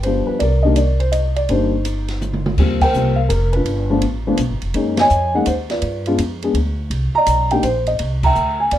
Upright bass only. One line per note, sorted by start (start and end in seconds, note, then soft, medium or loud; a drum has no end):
0.00 0.24 G1 medium
0.28 muted upright bass stroke soft
0.41 1.45 C2 medium
1.49 2.54 G1 medium
2.58 2.93 D#2 medium
2.93 3.29 C2 medium
3.30 3.64 F1 medium
3.65 4.00 G1 medium
4.02 4.37 A1 medium
4.38 4.51 B1 medium
4.50 4.62 G1 medium
4.62 4.74 F1 medium
4.74 5.09 F#2 medium
5.10 5.45 F2 medium
5.46 5.82 D#2 medium
5.82 6.17 G2 medium
6.18 6.53 F2 medium
6.54 6.90 D2 medium
6.90 7.13 C2 medium
7.14 muted upright bass stroke soft
7.26 7.62 B1 medium
7.63 7.98 A#1 medium
8.00 8.35 C2 medium
8.36 8.71 D2 medium
8.72 8.79 E2 medium